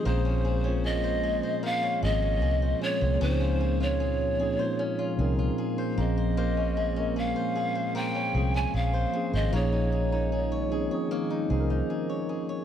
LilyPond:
<<
  \new Staff \with { instrumentName = "Pan flute" } { \time 4/4 \key bes \minor \tempo 4 = 76 c''4 ees''4 f''8 ees''4 des''8 | c''8. des''2 r8. ees''8~ | ees''4 f''4 g''8. aes''16 f''8. ees''16 | des''2 r2 | }
  \new Staff \with { instrumentName = "Steel-string acoustic guitar" } { \time 4/4 \key bes \minor <bes c''>16 des'16 aes'16 des'16 aes'16 c''16 aes'16 c''16 <bes c''>16 des'16 aes'16 des'16 aes'16 c''16 aes'16 c''16 | des'16 f'16 aes'16 f'16 aes'8 aes'16 c''16 des'16 f'16 aes'16 f'16 aes'16 c''16 bes16 c''16 | <bes c''>16 des'16 aes'16 des'16 aes'16 c''16 aes'16 c''16 <bes c''>16 des'16 aes'16 des'16 aes'16 c''16 aes'16 c''16 | <bes des''>16 ees'16 aes'16 ees'16 aes'16 des''16 aes'16 des''16 <bes des''>16 ees'16 aes'16 ees'16 aes'16 des''16 aes'16 des''16 | }
  \new Staff \with { instrumentName = "Tine electric piano" } { \time 4/4 \key bes \minor <f bes c' des' aes'>8 r16 <f bes c' des' f'>4~ <f bes c' des' f'>16 r8 <f bes c' des' aes'>8. r16 <f bes c' des' aes'>16 r16 | <f c' des' ees' aes'>4 r8 <f c' des' ees' aes'>16 <f aes des' ees' f'>8 r16 <f c' des' ees' bes'>4 <f bes c' des' aes'>8~ | <f bes c' des' aes'>8 r16 <f bes c' des' bes'>4~ <f bes c' des' bes'>16 r8 <f bes c' des' aes'>8. r16 <f bes c' des' aes'>16 r16 | <f bes des' ees' aes'>4 r8 <f c' des' ees' aes'>16 <f c' des' ees' aes'>8 r16 <f des' ees' aes' bes' c''>4 r8 | }
  \new Staff \with { instrumentName = "Ambient pad" } { \clef bass \time 4/4 \key bes \minor << { <bes, bes>1~ | <bes, bes>1~ | <bes, bes>1 | <ees ees'>1 | } \\ { aes1 | f2.~ f8 aes8~ | aes1 | bes1 | } >> }
  \new Staff \with { instrumentName = "Fingered electric bass" } { \clef bass \time 4/4 \key bes \minor bes,,4.~ bes,,16 r8. aes,,8 c,8 r16 c,16 | des,4.~ des,16 r8. c,8 r8 bes,,8~ | bes,,4.~ bes,,16 r8. c,8 bes,,8 r16 aes,,16 | bes,,4.~ bes,,16 r8. c,8 r4 | }
>>